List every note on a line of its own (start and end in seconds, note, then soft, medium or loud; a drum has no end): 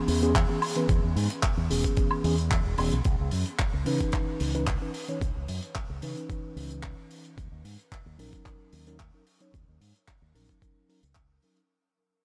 0.00 0.18 E3 medium
0.00 0.19 B3 medium
0.00 0.19 C#4 medium
0.00 0.19 G#4 loud
0.08 0.44 E2 medium
0.08 open hi-hat loud
0.22 0.31 E3 medium
0.22 0.31 B3 medium
0.22 0.31 C#4 medium
0.22 0.31 G#4 loud
0.22 closed hi-hat medium
0.35 kick loud
0.35 clap loud
0.35 closed hi-hat medium
0.49 0.58 E3 medium
0.49 0.58 B3 medium
0.49 0.58 C#4 medium
0.49 0.58 G#4 medium
0.62 open hi-hat loud
0.62 high woodblock medium
0.75 0.85 E3 medium
0.75 0.85 B3 medium
0.75 0.85 C#4 medium
0.75 0.85 B4 medium
0.75 closed hi-hat medium
0.89 1.00 E2 medium
0.89 kick loud
0.89 closed hi-hat medium
1.03 1.13 E2 medium
1.16 1.27 G#2 medium
1.16 open hi-hat medium
1.30 closed hi-hat medium
1.43 kick loud
1.43 clap loud
1.43 closed hi-hat medium
1.57 1.67 E2 medium
1.70 1.81 E1 medium
1.70 1.94 E3 medium
1.70 1.94 B3 medium
1.70 1.94 C#4 medium
1.70 1.94 G#4 medium
1.70 open hi-hat loud
1.84 kick medium
1.84 closed hi-hat medium
1.97 2.21 E3 medium
1.97 2.22 B3 medium
1.97 2.22 C#4 medium
1.97 2.22 G#4 medium
1.97 kick loud
1.97 closed hi-hat medium
2.11 high woodblock medium
2.24 2.60 E2 medium
2.24 2.34 E3 medium
2.24 2.34 B3 medium
2.24 2.34 C#4 medium
2.24 2.34 G#4 loud
2.24 open hi-hat loud
2.38 closed hi-hat medium
2.51 kick loud
2.51 clap loud
2.51 closed hi-hat medium
2.65 2.75 E1 medium
2.78 2.89 E1 medium
2.78 2.94 E3 medium
2.78 2.94 B3 medium
2.78 2.94 C#4 medium
2.78 2.94 G#4 medium
2.78 open hi-hat loud
2.78 high woodblock medium
2.92 3.02 B1 loud
2.92 closed hi-hat medium
3.04 3.16 C#2 medium
3.04 kick loud
3.04 closed hi-hat medium
3.19 3.29 C#2 medium
3.31 3.43 F#2 medium
3.31 open hi-hat medium
3.46 closed hi-hat medium
3.59 kick loud
3.59 clap loud
3.59 closed hi-hat medium
3.73 3.83 C#2 medium
3.85 3.97 C#3 medium
3.85 4.51 E3 medium
3.85 4.51 C#4 medium
3.85 4.51 D#4 medium
3.85 4.52 B4 loud
3.85 open hi-hat loud
4.01 kick medium
4.01 closed hi-hat medium
4.12 kick loud
4.12 clap medium
4.12 closed hi-hat medium
4.40 4.76 C#2 medium
4.40 open hi-hat loud
4.54 4.63 E3 medium
4.54 4.63 C#4 medium
4.54 4.63 D#4 medium
4.54 4.64 B4 medium
4.54 closed hi-hat medium
4.67 kick loud
4.67 clap loud
4.67 closed hi-hat medium
4.81 4.90 E3 medium
4.81 4.90 C#4 medium
4.81 4.91 D#4 medium
4.81 4.91 B4 medium
4.94 open hi-hat medium
5.08 5.17 E3 medium
5.08 5.17 C#4 medium
5.08 5.18 D#4 medium
5.08 5.18 C#5 medium
5.08 closed hi-hat medium
5.21 5.32 C#2 medium
5.21 kick loud
5.21 closed hi-hat medium
5.36 5.45 C#2 medium
5.48 5.59 F#2 medium
5.48 open hi-hat loud
5.63 closed hi-hat medium
5.75 kick loud
5.75 clap loud
5.75 closed hi-hat medium
5.90 5.99 C#2 medium
6.02 6.13 C#3 medium
6.02 6.26 E3 medium
6.02 6.26 C#4 medium
6.02 6.27 D#4 medium
6.02 6.27 B4 medium
6.02 open hi-hat loud
6.17 closed hi-hat medium
6.29 7.36 E3 medium
6.29 7.36 C#4 medium
6.29 7.36 D#4 medium
6.29 7.37 B4 medium
6.29 kick loud
6.29 closed hi-hat medium
6.56 6.92 C#2 medium
6.56 open hi-hat loud
6.71 closed hi-hat medium
6.83 kick loud
6.83 clap loud
6.83 closed hi-hat medium
7.11 open hi-hat loud
7.25 closed hi-hat medium
7.38 7.48 D#2 medium
7.38 kick loud
7.38 closed hi-hat medium
7.52 7.61 D#2 medium
7.65 7.75 G#2 medium
7.65 open hi-hat loud
7.79 closed hi-hat medium
7.92 kick loud
7.92 clap loud
7.92 closed hi-hat medium
8.06 8.16 D#2 medium
8.18 8.30 A#1 medium
8.18 8.83 F#3 medium
8.18 8.83 C#4 medium
8.18 8.84 D#4 medium
8.18 8.84 A#4 loud
8.18 open hi-hat medium
8.33 kick medium
8.33 closed hi-hat medium
8.46 kick loud
8.46 clap medium
8.46 closed hi-hat medium
8.73 9.09 D#2 medium
8.73 open hi-hat loud
8.87 8.96 F#3 medium
8.87 8.96 C#4 medium
8.87 8.96 D#4 medium
8.87 8.96 A#4 loud
8.87 closed hi-hat medium
8.99 kick loud
8.99 clap loud
8.99 closed hi-hat medium
9.14 9.23 F#3 medium
9.14 9.23 C#4 medium
9.14 9.23 D#4 medium
9.14 9.23 A#4 medium
9.27 open hi-hat loud
9.40 9.50 F#3 medium
9.40 9.50 C#4 medium
9.40 9.50 D#4 medium
9.40 9.50 C#5 medium
9.40 closed hi-hat medium
9.54 9.65 D#2 medium
9.54 kick loud
9.54 closed hi-hat medium
9.68 9.78 D#2 medium
9.81 9.92 G#2 medium
9.81 open hi-hat loud
9.96 closed hi-hat medium
10.08 kick loud
10.08 clap loud
10.08 closed hi-hat medium
10.22 10.32 D#2 medium
10.34 10.46 A#1 medium
10.34 10.59 F#3 medium
10.34 10.59 C#4 medium
10.34 10.59 D#4 medium
10.34 10.59 A#4 medium
10.34 open hi-hat medium
10.49 kick medium
10.49 closed hi-hat medium
10.61 10.86 F#3 medium
10.61 10.86 C#4 medium
10.61 10.87 D#4 medium
10.61 10.87 A#4 medium
10.61 kick loud
10.61 closed hi-hat medium
10.89 10.99 F#3 medium
10.89 10.99 C#4 medium
10.89 10.99 D#4 medium
10.89 10.99 A#4 medium
10.89 open hi-hat medium
11.03 11.38 C#2 medium
11.03 closed hi-hat medium
11.15 kick loud
11.15 clap loud
11.15 closed hi-hat medium
11.42 11.59 F#3 medium
11.42 11.59 C#4 medium
11.42 11.59 D#4 medium
11.42 11.59 A#4 medium
11.42 open hi-hat medium
11.57 closed hi-hat medium